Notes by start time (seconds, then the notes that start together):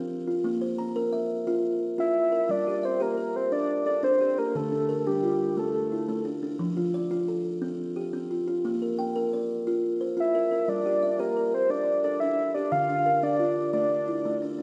Already playing: C4
0.27 F4
0.44 A#3
0.61 C5
0.78 A#5
0.96 A#4
1.12 E5
1.47 F4
1.98 F4 E5
2.32 A#4
2.49 G3 D5
2.67 G4
2.83 C5 E5
3.00 G4 A#4
3.18 A#4
3.36 C5
3.52 D4 D5
3.86 A4 D5
4.03 D4 C5
4.20 G4 C5
4.38 G4 A#4
4.55 D3 A4
4.72 D4
4.89 A#4
5.07 D4 G4
5.23 F4
5.57 A3 A4
5.92 E4
6.09 A3
6.25 D4
6.43 D4
6.59 F3
6.77 F4
6.94 D5
7.11 F4
7.28 A4
7.62 C4
7.96 G4
8.13 C4
8.31 F4
8.48 F4
8.65 A#3
8.82 A#4
8.99 G5
9.16 A#4
9.33 D5
9.67 F4
10.01 C5
10.17 F4 E5
10.35 A#4
10.51 A#4
10.68 G3 D5
10.86 G4
11.03 E5
11.19 G4 A#4
11.37 A#4
11.54 C5
11.70 D4 D5
12.04 A4 D5
12.20 D4 E5
12.54 G4 D5
12.72 D3 F5
12.89 D4
13.06 A#4
13.23 D4 D5
13.39 F4
13.73 A3 D5
14.08 E4
14.25 A3
14.42 D4
14.58 D4